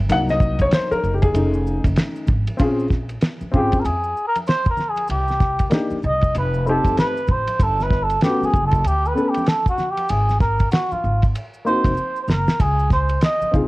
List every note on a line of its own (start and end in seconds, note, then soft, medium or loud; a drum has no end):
0.09 0.65 C2 loud
0.09 1.31 F#3 medium
0.09 1.31 A#3 medium
0.09 1.31 D#4 medium
0.09 0.17 F#5 loud
0.09 ride medium
0.09 maracas medium
0.29 0.62 D#5 loud
0.29 snare soft
0.29 maracas soft
0.40 kick loud
0.40 maracas soft
0.59 0.73 C#5 medium
0.59 kick medium
0.59 ride soft
0.59 maracas medium
0.71 0.91 C5 medium
0.71 snare loud
0.71 hi-hat pedal soft
0.71 ride medium
0.71 maracas medium
0.91 1.13 A#4 medium
0.91 muted upright bass stroke medium
0.91 high conga medium
0.91 maracas soft
1.03 1.31 F#1 medium
1.03 high conga soft
1.03 low conga medium
1.03 maracas soft
1.14 1.23 G4 medium
1.22 1.81 G#4 loud
1.22 kick medium
1.22 ride medium
1.22 maracas soft
1.33 1.79 F1 loud
1.33 2.24 A3 medium
1.33 2.24 C#4 medium
1.33 2.25 D#4 medium
1.33 ride medium
1.33 maracas medium
1.53 maracas soft
1.67 maracas medium
1.84 1.96 F#1 medium
1.84 kick loud
1.84 ride medium
1.84 high conga medium
1.84 maracas soft
1.96 snare loud
1.96 hi-hat pedal soft
1.96 ride medium
1.96 maracas medium
2.16 maracas soft
2.27 2.45 G#1 medium
2.27 kick loud
2.27 high conga medium
2.27 low conga medium
2.27 maracas soft
2.47 ride medium
2.47 high conga soft
2.47 maracas soft
2.57 3.15 A#1 loud
2.57 2.82 C4 medium
2.57 2.83 C#4 medium
2.57 2.84 F4 medium
2.57 kick loud
2.57 ride medium
2.57 maracas medium
2.62 2.85 G#4 medium
2.79 maracas soft
2.90 kick medium
2.90 snare soft
2.90 maracas soft
3.09 ride soft
3.09 maracas soft
3.21 snare loud
3.21 hi-hat pedal soft
3.21 ride medium
3.21 maracas medium
3.41 muted upright bass stroke soft
3.41 high conga medium
3.41 maracas soft
3.52 3.86 G#1 medium
3.52 3.77 C4 medium
3.52 3.77 C#4 medium
3.52 3.78 F4 medium
3.52 3.81 G4 medium
3.52 kick medium
3.52 low conga medium
3.52 maracas soft
3.56 3.79 G#4 medium
3.72 kick medium
3.72 ride soft
3.72 maracas soft
3.80 3.86 A#4 medium
3.85 4.12 F2 medium
3.85 4.27 G#4 medium
3.85 ride medium
3.85 maracas medium
4.04 maracas soft
4.17 maracas soft
4.28 4.37 A#4 medium
4.35 ride medium
4.35 high conga medium
4.35 maracas soft
4.47 4.67 C5 loud
4.47 snare medium
4.47 hi-hat pedal soft
4.47 ride medium
4.47 maracas medium
4.65 kick medium
4.65 maracas soft
4.70 4.91 A#4 medium
4.77 snare soft
4.77 high conga medium
4.77 low conga medium
4.77 maracas soft
4.90 5.10 G#4 medium
4.96 ride medium
4.96 high conga soft
4.96 maracas soft
5.08 5.65 C2 medium
5.08 5.69 G4 medium
5.08 ride medium
5.08 maracas medium
5.28 snare soft
5.28 maracas soft
5.40 kick medium
5.40 snare soft
5.40 maracas soft
5.59 kick medium
5.59 ride medium
5.59 maracas soft
5.70 5.95 A#3 medium
5.70 5.96 D4 medium
5.70 5.96 D#4 medium
5.70 5.97 G4 medium
5.70 snare loud
5.70 hi-hat pedal soft
5.70 ride medium
5.70 maracas medium
5.91 muted upright bass stroke soft
5.91 high conga medium
5.91 maracas soft
6.03 6.31 C2 loud
6.03 6.34 D#5 loud
6.03 low conga medium
6.03 maracas soft
6.21 kick medium
6.21 ride medium
6.21 maracas soft
6.35 6.80 F1 loud
6.35 6.66 B4 loud
6.35 ride medium
6.35 maracas medium
6.54 maracas soft
6.66 7.13 A3 medium
6.66 7.13 C4 medium
6.66 7.14 D#4 medium
6.66 7.14 G4 medium
6.66 6.97 A4 medium
6.66 maracas medium
6.85 6.96 G1 medium
6.85 kick medium
6.85 ride medium
6.85 high conga medium
6.85 maracas soft
6.97 7.33 B4 loud
6.97 snare loud
6.97 hi-hat pedal soft
6.97 ride medium
6.97 maracas medium
7.17 maracas soft
7.27 7.45 A1 medium
7.27 kick medium
7.27 high conga medium
7.27 low conga medium
7.27 maracas soft
7.32 7.65 C5 medium
7.48 ride medium
7.48 high conga soft
7.48 maracas soft
7.60 8.15 G1 loud
7.60 7.85 A4 medium
7.60 kick loud
7.60 ride medium
7.60 maracas medium
7.80 8.05 B4 medium
7.80 snare soft
7.80 maracas soft
7.91 kick medium
7.91 snare soft
7.91 maracas soft
8.03 8.23 A4 medium
8.10 ride soft
8.10 maracas soft
8.21 8.46 A3 medium
8.21 8.47 B3 medium
8.21 8.47 C#4 medium
8.21 8.47 G4 medium
8.21 snare loud
8.21 hi-hat pedal soft
8.21 ride medium
8.21 maracas medium
8.26 8.48 F#4 medium
8.42 8.65 G#4 medium
8.42 muted upright bass stroke soft
8.42 high conga medium
8.42 maracas soft
8.54 8.81 F#1 loud
8.54 kick medium
8.54 low conga medium
8.54 maracas soft
8.66 8.88 A4 medium
8.71 kick medium
8.71 ride medium
8.71 maracas soft
8.84 9.13 D2 loud
8.84 9.09 G4 medium
8.84 ride medium
8.84 maracas medium
9.05 9.31 B4 medium
9.05 maracas soft
9.14 9.39 A3 medium
9.14 9.40 B3 medium
9.14 9.40 C#4 medium
9.14 9.41 A4 medium
9.14 maracas medium
9.29 9.50 G4 medium
9.34 ride medium
9.34 high conga medium
9.34 maracas soft
9.46 9.69 A4 medium
9.46 snare loud
9.46 hi-hat pedal soft
9.46 ride medium
9.46 maracas medium
9.66 9.92 F#4 medium
9.66 kick medium
9.66 maracas soft
9.78 snare soft
9.78 high conga medium
9.78 low conga medium
9.78 maracas soft
9.91 10.12 G4 medium
9.97 ride medium
9.97 high conga soft
9.97 maracas soft
10.09 10.65 G#1 medium
10.09 10.40 G#4 medium
10.09 ride medium
10.09 maracas medium
10.29 snare soft
10.29 maracas soft
10.40 10.70 A#4 medium
10.40 kick loud
10.40 snare soft
10.40 maracas soft
10.59 kick medium
10.59 ride soft
10.59 maracas soft
10.71 10.93 F#4 medium
10.71 snare loud
10.71 hi-hat pedal soft
10.71 ride medium
10.71 maracas medium
10.91 11.24 F4 medium
10.91 muted upright bass stroke medium
10.91 high conga medium
10.91 maracas soft
11.04 11.31 G#1 medium
11.04 high conga soft
11.04 low conga medium
11.04 maracas soft
11.22 kick medium
11.22 ride soft
11.22 maracas soft
11.35 ride medium
11.35 maracas medium
11.54 maracas soft
11.65 11.90 A#3 medium
11.65 11.90 C4 medium
11.65 11.91 D#4 medium
11.65 11.91 F#4 medium
11.65 12.19 C5 medium
11.65 maracas medium
11.84 11.96 F1 medium
11.84 kick medium
11.84 ride medium
11.84 high conga medium
11.84 maracas soft
11.97 maracas medium
12.16 maracas soft
12.23 12.32 C5 medium
12.28 12.45 F#1 medium
12.28 12.63 A#4 medium
12.28 snare medium
12.28 high conga medium
12.28 low conga medium
12.28 maracas soft
12.47 snare medium
12.47 high conga soft
12.47 maracas soft
12.59 13.15 C#2 loud
12.59 12.92 G#4 medium
12.59 kick loud
12.59 ride medium
12.59 maracas medium
12.79 maracas soft
12.90 13.21 C5 medium
12.90 kick loud
12.90 snare soft
12.90 maracas soft
13.09 ride medium
13.09 maracas soft
13.21 13.52 D#5 medium
13.21 snare loud
13.21 hi-hat pedal soft
13.21 ride medium
13.21 maracas medium
13.41 muted upright bass stroke soft
13.41 high conga medium
13.41 maracas soft
13.51 13.68 C2 medium
13.51 13.68 C4 medium
13.51 13.68 D#4 medium
13.51 13.68 F4 medium
13.51 13.68 G#4 medium
13.51 kick loud
13.51 low conga medium
13.51 maracas soft